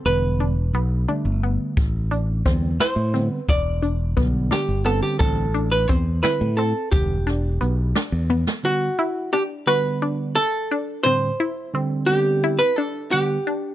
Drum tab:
HH |----------|x-x-x-x-x-|x-x-x-x-x-|x-x-x-x-x-|
SD |----------|----o-o-o-|------o---|------o---|
T1 |----------|----------|----------|----------|
BD |----------|o---o-----|o---o-----|o---o-----|

HH |x-x-x-x---|----------|----------|----------|
SD |--o---o--o|----------|----------|----------|
T1 |--------o-|----------|----------|----------|
BD |o---------|----------|----------|----------|